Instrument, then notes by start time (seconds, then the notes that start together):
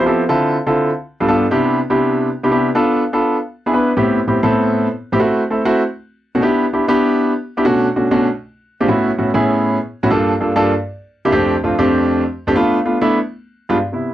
grand piano
0.06 F3 B3 C4 E4 G4 A4
0.29 D3 C4 E4 F4 A4
0.66 D3 C4 E4 F4 A4
1.20 G2 B3 D4 F4 A4
1.28 G2 B3 D4 F4 A4
1.51 C3 B3 D4 E4 G4
1.90 C3 B3 D4 E4 G4
2.43 C3 B3 D4 E4 G4
2.51 C3 B3 D4 E4 G4
2.75 B3 D4 F4 A4
3.13 B3 D4 F4 A4
3.66 B3 D4 E4 G#4
3.74 B3 D4 E4 B4
3.97 A2 B3 C4 E4 G4
4.27 A2 B3 C4 E4 G4
4.43 A2 B3 C4 E4 A4
5.12 A2 B3 C4 E4 G4
5.19 A3 C4 E4 F#4
5.50 A3 C4 E4 A4
5.65 A3 C4 E4 F#4
6.35 B2 A3 C#4 D#4 F#4
6.42 B3 D4 E4 G4
6.73 B3 D4 E4 G4
6.88 B3 D4 E4 G4
7.57 B3 D4 E4 G4
7.65 B2 A3 C#4 D4 F#4
7.96 B2 A3 C#4 D4 F#4
8.11 B2 A3 C#4 D4 F#4
8.80 A#2 G#3 C4 D4 F4 G4
8.88 A2 B3 C#4 E4 F#4
9.18 A2 B3 C#4 E4 F#4
9.34 A2 B3 C#4 E4 G#4
10.03 A2 B3 C#4 E4 F#4
10.11 G2 A#3 D4 F4 A4
10.40 G2 A#3 D4 F4 A4
10.56 G2 A#3 D4 F4 A4
11.25 C3 A#3 D4 E4 G4
11.32 F2 A3 C4 D4 G4
11.64 F2 A3 C4 D4 F4
11.79 F2 A3 C4 D4 G4
12.47 F2 A3 C4 D4 G4
12.55 A3 B3 D4 F4
12.85 A3 B3 D4 F4
13.01 A3 B3 D4 E4
13.69 G2 G#3 B3 D4 F4
13.92 C3 B3 E4